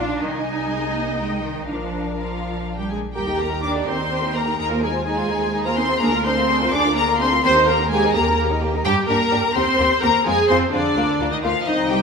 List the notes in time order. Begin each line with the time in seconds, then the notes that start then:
Already playing: D4 F4 F5
0.00 D4 F5
0.10 D5
0.21 C2 D#3 D#4 D#5 G#5
0.46 G3
0.70 G#3
0.95 A#3
1.18 G#3 G5
1.43 D#3
1.67 A#1 F3 D4 A#4 F5
2.16 F3 F4 F5
2.78 G3 G4 G5
2.91 G#3 G#4 G#5
3.14 D#2 G3 G4 A#4 G5
3.28 D#4 G4
3.38 A#3 G4 A#4 A#5
3.51 D#4 G4
3.63 D4 G4 A#4 D5 D6
3.75 D#4 G4
3.87 D#2 C4 G4 A#4 C5 C6
3.99 D#4 G4
4.11 G4 A#4
4.23 D#4 G4
4.35 A#3 G4 A#4 A#5
4.46 D#4 G4
4.58 D#2 A#3 D#4 G#4 A#4 A#5
4.71 F4 C5
4.82 G#3 D#4 G#4 G#5
4.94 F4 C5
5.06 G#3 D#4 G#4 G#5
5.18 F4 C5
5.30 D#2 D#4 G#4
5.42 F4 C5
5.54 D#4 G#4
5.65 A#3 F4 A#4 C5 A#5
5.77 C4 D#4 G#4 C5 C6
5.90 F4 C5
6.01 D2 A#3 D4 G#4 A#4 A#5
6.13 F4 A#4
6.25 C4 D4 G#4 C5 C6
6.37 F4 A#4
6.49 D4 G#4
6.62 F4 A#4
6.72 D2 D4 G#4 D5 D6
6.86 F4 A#4
6.96 A#3 D4 G#4 A#4 A#5
7.09 F4 A#4
7.20 C4 D4 G#4 C5 C6
7.33 F4 A#4
7.44 D#2 A#3 C4 G4 C5 C6
7.56 D#4 A#4
7.67 A#3 G4 A#4 A#5
7.80 D#4 A#4
7.91 G#3 A#3 G4 G#4 G#5
8.04 D#4 A#4
8.15 D#2 A#3 G4 A#4 A#5
8.28 D#4 A#4
8.39 A#3 G4
8.51 D#4 A#4
8.63 A#3 G4
8.75 D#4 A#4
8.85 G2 G3 D4 G4 G5
9.09 G2 A#3 D4 G4 A#4 A#5
9.32 G2 D4 G4
9.55 D#2 C4 G4 C5 C6
9.79 D#2 C4 G4
10.02 D#2 A#3 C4 G4 A#4 A#5
10.26 F2 G#3 C4 F4 G#4 G#5
10.48 F2 C4 F4 C5 C6
10.72 F2 D3 C4 D4 F4 D5
10.96 D2 A#3 F4
11.20 D2 A#3 F4
11.31 D#3 D#4 D#5
11.43 D2 F3 A#3 F4 F5
11.67 C2 D#3 C4 D#4 D#5
11.91 G3 G4 G5